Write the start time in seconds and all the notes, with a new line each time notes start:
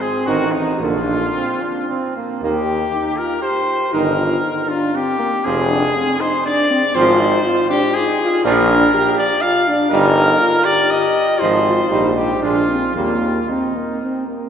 Already playing: C4
0.01 G#4
0.26 A1 D#3 C4 D#4 F#4
0.52 D#4
0.80 A#1 D3 A#3 D4 F4
1.34 C4
1.61 D4
1.89 C4
2.16 A#3
2.42 D#2 D#3 A#3 G4
2.93 D#4
3.17 F4 A#4
3.42 G4 C5
3.93 G1 D#3 D#4 A#4
4.19 F4
4.44 D#4
4.68 D4 F4
4.94 C4 G4
5.19 A#3
5.45 F1 F3 C4 G#4
5.70 D4
5.95 C4
6.20 D#4 C5
6.45 D4 D5
6.70 C4
6.95 G#1 F3 C4 F4 C5
7.20 D#4
7.45 F4
7.69 D4 G4
7.94 D#4 G#4
8.20 F4
8.44 A#1 F3 D4 A#4
8.94 G4
9.18 D5
9.41 F4 F5
9.68 D4
9.90 G1 G3 D#4 A#4
10.40 F4
10.65 G4 D5
10.91 D#5
11.40 G#1 F3 D#4 C5
11.65 F4
11.91 A#1 G3 D#4 G4
12.16 D#4 G4
12.42 A#1 G#3 D4 F4
12.69 C4
12.95 D#2 G3 A#3 F4
13.49 C4 D#4
13.76 A#3
14.01 C4
14.28 A#3